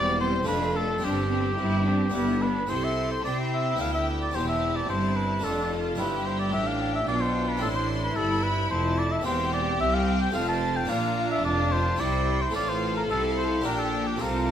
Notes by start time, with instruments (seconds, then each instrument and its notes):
Already playing: double bass section E1, harpsichord E2 C4 E4 G4, cello section E2, viola section G3, violin section C4 D5, oboe D5
0.18 viola section G3, violin section C4 C5, oboe C5
0.43 cello section F2, harpsichord A3 D4 F4, viola section A3, violin section B4
0.47 double bass section F1, harpsichord F2, violin section D4, oboe B4
0.73 viola section A3, violin section D4 A4, oboe A4
0.98 cello section G2, harpsichord C4 D4, viola section C4, violin section G4
1.02 double bass section G1, harpsichord G2, violin section D4, oboe G4
1.30 viola section C4, violin section D4
1.58 double bass section G1, cello section G2, harpsichord G2, viola section C4, violin section E4
1.86 viola section C4, violin section D4
2.10 harpsichord B3 D4
2.14 double bass section G1, harpsichord G2, cello section G2, viola section B3, violin section E4, oboe G4
2.42 viola section B3, violin section D4, oboe B4
2.67 double bass section C2, harpsichord C3 C4 E4, cello section C3, viola section C4, violin section A4 C6, oboe C5
2.84 oboe E5
3.11 oboe C5
3.24 double bass section C3, harpsichord C4, cello section C4, viola section E4, violin section G4 G5, oboe D5
3.53 oboe E5
3.77 harpsichord D2 B3 D4, double bass section D2, cello section D2
3.81 oboe F5
3.94 oboe E5
4.22 oboe D5
4.31 double bass section E1, harpsichord E2 C4 G4, cello section E2, viola section E4, violin section G4 A5, oboe C5
4.48 oboe E5
4.76 oboe D5
4.89 double bass section G1, harpsichord G2, cello section G2, viola section C4, violin section E4, oboe C5
5.16 oboe B4
5.39 harpsichord A3 D4 F4
5.44 double bass section F1, harpsichord F2, cello section F2, viola section D4, oboe A4, violin section A4
5.72 viola section F4
5.95 double bass section G1, harpsichord G2 D4 F4, cello section G2, viola section E4, violin section G4, oboe B4
6.00 violin section G5
6.26 oboe C5
6.39 oboe D5
6.53 double bass section A1, harpsichord A2, cello section A2, viola section D4, oboe E5
6.67 oboe F5
6.95 oboe E5
7.07 double bass section B1, harpsichord B2, cello section B2, viola section D4, violin section F4, oboe D5
7.21 oboe C5
7.48 oboe B4
7.57 harpsichord C4 E4
7.61 double bass section A1, harpsichord A2, cello section A2, violin section E4 C6, oboe A4
7.75 oboe C5
8.03 oboe B4
8.16 double bass section G1, harpsichord G2, cello section G2, viola section E4, oboe A4, violin section B5
8.43 oboe B4
8.71 double bass section F1, harpsichord F2, cello section F2, oboe C5, violin section A5
8.98 oboe D5
9.12 oboe E5
9.21 harpsichord A#3 C4 G4
9.25 double bass section E1, harpsichord E2, cello section E2, viola section C4, violin section G4 G5, oboe C5
9.53 oboe D5
9.80 harpsichord C2, cello section C2, double bass section C2, viola section C4, oboe E5, violin section G5
9.94 oboe F5
10.21 oboe G5
10.30 harpsichord A3 C4 F4
10.35 double bass section F1, harpsichord F2, cello section F2, viola section C4, violin section F4 A5, oboe F5
10.48 oboe A5
10.76 oboe G5
10.85 harpsichord A#3 D4 F4, violin section F4 A#5
10.90 double bass section A#1, harpsichord A#2, cello section A#2, viola section D4, oboe F5
11.31 oboe E5
11.44 double bass section F1, harpsichord F2, cello section F2, oboe D5, violin section A5
11.72 oboe C5
11.96 double bass section C2, harpsichord C3 C4 E4, cello section C3, violin section E4 G5, viola section E4, oboe D5
12.41 oboe C5
12.50 harpsichord A3 C4 F4, violin section A4
12.54 double bass section A1, harpsichord A2, cello section A2, viola section F4, oboe D5, violin section F5
12.69 oboe C5
12.97 oboe A#4
13.09 double bass section C2, harpsichord C3, cello section C3, viola section E4, oboe A4, violin section F5
13.37 oboe C5
13.61 double bass section A#1, harpsichord A#2 D4 G4, cello section A#2, oboe A#4, violin section G5
13.65 viola section D4, violin section G4
13.78 oboe A4
14.07 oboe G4
14.17 harpsichord A3 C4 F4
14.21 double bass section C2, harpsichord C3, cello section C3, viola section C4, violin section F4 A5, oboe A#4